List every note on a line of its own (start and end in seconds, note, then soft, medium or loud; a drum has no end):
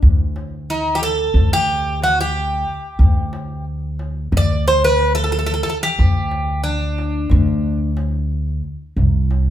0.02 1.31 D2 medium
0.02 darbuka dum medium
0.36 darbuka tek medium
0.70 0.97 D#4 medium
0.95 1.02 G4 medium
1.03 1.53 A4 loud
1.03 darbuka tek medium
1.34 2.63 D2 medium
1.34 darbuka dum medium
1.53 1.99 G4 loud
2.02 2.20 F#4 medium
2.02 darbuka tek medium
2.21 3.64 G4 medium
2.53 darbuka ka soft
2.99 4.28 D2 medium
2.99 darbuka dum medium
3.33 darbuka tek medium
3.99 darbuka tek medium
4.32 5.61 D2 medium
4.32 darbuka dum medium
4.37 4.67 D5 medium
4.68 4.84 C5 loud
4.84 5.14 B4 loud
4.99 darbuka tek medium
5.15 5.23 A4 loud
5.24 5.31 A4 medium
5.32 5.37 A4 medium
5.39 5.45 A4 medium
5.46 5.52 A4 medium
5.54 5.62 A4 medium
5.63 5.68 A4 medium
5.69 5.77 A4 medium
5.83 6.63 G4 medium
5.99 7.27 D2 medium
5.99 darbuka dum medium
6.31 darbuka tek medium
6.63 7.90 D4 medium
6.98 darbuka tek medium
7.30 8.60 D2 loud
7.30 darbuka dum loud
7.97 darbuka tek medium
8.32 darbuka ka soft
8.48 darbuka ka soft
8.64 darbuka ka soft
8.96 9.50 C2 medium
8.96 darbuka dum medium
9.31 darbuka tek medium